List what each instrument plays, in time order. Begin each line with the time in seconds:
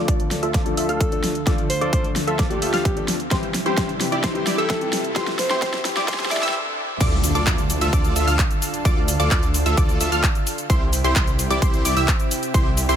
Already playing: analog synth pad D2 D3 A3 F4, grand piano F3 A3 D4 A4, riser
0.08 supersaw synth F4 A4 D5, synth pluck D6, kick, closed hi-hat
0.20 closed hi-hat
0.31 grand piano F3 A3 D4 A4, snare, open hi-hat
0.43 supersaw synth F4 A4 E5, synth pluck E6, closed hi-hat
0.54 supersaw synth F4 A4 D5, synth pluck D6, kick, snare, closed hi-hat
0.65 grand piano F3 A3 D4 A4, closed hi-hat
0.77 supersaw synth F4 A4 E5, synth pluck E6, open hi-hat
0.88 grand piano F3 A3 D4 A4, supersaw synth F4 A4 F5, alto saxophone A4, synth pluck F6, closed hi-hat
1.01 kick, closed hi-hat
1.11 grand piano F3 A3 D4 A4, closed hi-hat
1.24 snare, open hi-hat
1.35 closed hi-hat
1.46 grand piano F3 A3 D4 A4, supersaw synth F4 A4 D5, synth pluck D6, kick, snare, closed hi-hat
1.58 closed hi-hat
1.70 alto saxophone C5, open hi-hat
1.81 grand piano F3 A3 D4 A4, supersaw synth F4 A4 D5, synth pluck D6, closed hi-hat
1.93 synth pluck D6, kick, closed hi-hat
2.04 closed hi-hat
2.15 grand piano F3 A3 D4 A4, snare, open hi-hat
2.27 supersaw synth F4 A4 E5, alto saxophone A4, synth pluck E6, closed hi-hat
2.39 supersaw synth F4 A4 D5, synth pluck D6, kick, snare, closed hi-hat
2.50 grand piano F3 A3 D4 A4, alto saxophone G4, closed hi-hat
2.62 supersaw synth F4 A4 E5, synth pluck E6, open hi-hat
2.73 grand piano F3 A3 D4 A4, supersaw synth F4 A4 F5, synth pluck F6, snare, open hi-hat
2.85 kick, closed hi-hat
2.96 grand piano F3 A3 D4 A4, closed hi-hat
3.08 snare, open hi-hat
3.20 closed hi-hat
3.31 analog synth pad C2 C3 G3 E4, grand piano E3 G3 C4 G4, supersaw synth E4 G4 C5, synth pluck C6, kick, snare, closed hi-hat
3.43 closed hi-hat
3.54 snare, open hi-hat
3.65 grand piano E3 G3 C4 G4, supersaw synth E4 G4 C5, synth pluck C6, closed hi-hat
3.77 supersaw synth E4 G4 C5, synth pluck C6, kick, snare, closed hi-hat
3.89 closed hi-hat
4.00 grand piano E3 G3 C4 G4, snare, open hi-hat
4.12 supersaw synth E4 G4 D5, synth pluck D6, closed hi-hat
4.24 supersaw synth E4 G4 C5, synth pluck C6, kick, snare, closed hi-hat
4.34 grand piano E3 G3 C4 G4, closed hi-hat
4.47 supersaw synth E4 G4 D5, synth pluck D6, snare, open hi-hat
4.58 grand piano E3 G3 C4 G4, supersaw synth E4 G4 E5, alto saxophone A4, synth pluck E6, closed hi-hat
4.70 kick, snare, closed hi-hat
4.81 grand piano E3 G3 C4 G4, closed hi-hat
4.93 snare, open hi-hat
5.04 closed hi-hat
5.15 grand piano E3 G3 C4 G4, analog synth pad A3, supersaw synth E4 G4 C5, synth pluck C6, kick, snare, closed hi-hat
5.27 snare, closed hi-hat
5.39 alto saxophone C5, snare, open hi-hat
5.50 grand piano E3 G3 C4 G4, supersaw synth E4 G4 C5, synth pluck C6, snare, closed hi-hat
5.62 supersaw synth E4 G4 C5, synth pluck C6, kick, snare, closed hi-hat
5.74 snare, closed hi-hat
5.84 grand piano E3 G3 C4 G4, snare, open hi-hat
5.97 supersaw synth E4 G4 D5, synth pluck D6, snare, closed hi-hat
6.08 supersaw synth E4 G4 C5, synth pluck C6, kick, snare, closed hi-hat, swell
6.14 snare
6.19 grand piano E3 G3 C4 G4, snare, closed hi-hat
6.26 snare
6.31 supersaw synth E4 G4 D5, alto saxophone E5, synth pluck D6, snare, open hi-hat
6.37 snare
6.42 grand piano E3 G3 C4 G4, supersaw synth E4 G4 E5, synth pluck E6, snare, open hi-hat
6.49 snare
7.01 detuned saw bass D2, analog synth pad D3 D4 F4 A4, supersaw synth F4 A4 D5, synth pluck D6, kick, closed hi-hat, crash, impact, shaker
7.24 open hi-hat, shaker
7.35 detuned saw bass D2, supersaw synth F4 A4 D5, synth pluck D6, closed hi-hat, shaker
7.47 detuned saw bass D2, supersaw synth F4 A4, synth pluck D6, kick, clap, closed hi-hat, shaker
7.58 closed hi-hat, shaker
7.70 open hi-hat, shaker
7.81 detuned saw bass D2, supersaw synth F4 A4 E5, synth pluck E6, closed hi-hat, shaker
7.93 detuned saw bass D2, supersaw synth D5, synth pluck D6, kick, closed hi-hat, shaker
8.04 closed hi-hat, shaker
8.16 detuned saw bass D2, supersaw synth F4 A4 E5, synth pluck E6, open hi-hat, shaker
8.27 detuned saw bass D2, supersaw synth F4 A4 F5, synth pluck F6, open hi-hat, shaker
8.39 kick, clap, closed hi-hat, shaker
8.51 closed hi-hat, shaker
8.62 open hi-hat, shaker
8.74 closed hi-hat, shaker
8.85 detuned saw bass D2, supersaw synth F4 A4 D5, synth pluck D6, kick, closed hi-hat, shaker
9.08 open hi-hat, shaker
9.20 detuned saw bass D2, supersaw synth F4 A4 D5, synth pluck D6, closed hi-hat, shaker
9.31 detuned saw bass D2, supersaw synth D5, synth pluck D6, kick, clap, closed hi-hat, shaker
9.43 closed hi-hat, shaker
9.54 open hi-hat, shaker
9.66 detuned saw bass D2, supersaw synth F4 A4 E5, synth pluck E6, closed hi-hat, shaker
9.77 detuned saw bass D2, supersaw synth F4 A4 D5, synth pluck D6, kick, closed hi-hat, shaker
9.89 closed hi-hat, shaker
10.00 detuned saw bass D2, supersaw synth F4 A4 E5, synth pluck E6, open hi-hat, shaker
10.12 detuned saw bass D2, supersaw synth F4 A4 F5, synth pluck F6, closed hi-hat, shaker
10.24 kick, clap, closed hi-hat, shaker
10.35 closed hi-hat, shaker
10.47 open hi-hat, shaker
10.58 closed hi-hat, shaker
10.70 detuned saw bass C2, analog synth pad C3 C4 E4 G4, supersaw synth E4 G4 C5, synth pluck C6, kick, closed hi-hat, shaker
10.93 open hi-hat, shaker
11.04 detuned saw bass C2, supersaw synth E4 G4 C5, synth pluck C6, closed hi-hat, shaker
11.16 detuned saw bass C2, synth pluck C6, kick, clap, closed hi-hat, shaker
11.28 closed hi-hat, shaker
11.39 open hi-hat, shaker
11.50 detuned saw bass C2, supersaw synth E4 G4 D5, synth pluck D6, closed hi-hat, shaker
11.62 detuned saw bass C2, supersaw synth E4 C5, synth pluck C6, kick, closed hi-hat, shaker
11.74 closed hi-hat, shaker
11.85 detuned saw bass C2, supersaw synth E4 G4 D5, synth pluck D6, open hi-hat, shaker
11.97 detuned saw bass C2, supersaw synth E4 G4 E5, synth pluck E6, open hi-hat, shaker
12.08 kick, clap, closed hi-hat, shaker
12.20 closed hi-hat, shaker
12.31 open hi-hat, shaker
12.43 closed hi-hat, shaker
12.54 detuned saw bass C2, supersaw synth E4 G4 C5, synth pluck C6, kick, closed hi-hat, shaker
12.77 open hi-hat, shaker
12.89 detuned saw bass C2, supersaw synth E4 G4 C5, synth pluck C6, closed hi-hat, shaker